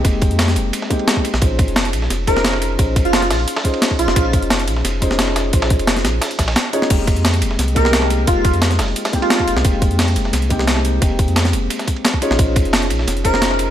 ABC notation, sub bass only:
X:1
M:4/4
L:1/16
Q:1/4=175
K:Fm
V:1 name="Sub bass" clef=bass
F,,,3 F,,3 F,,,2 z6 z B,,, | B,,,3 F,,,3 B,,,2 F,,,8 | B,,,3 F,,,3 B,,,2 z6 B,,, F,,, | B,,,3 F,,,3 B,,,2 F,,,8 |
B,,,3 F,,,3 B,,,2 z2 B,,,2 z4 | F,,,3 F,,3 F,,,2 C,,8 | F,,,3 F,,3 F,,,2 z6 F,,, C,, | F,,,3 F,,3 F,,,2 C,,8 |
F,,,3 F,,3 F,,,2 z6 z B,,, | B,,,3 F,,,3 B,,,2 F,,,8 |]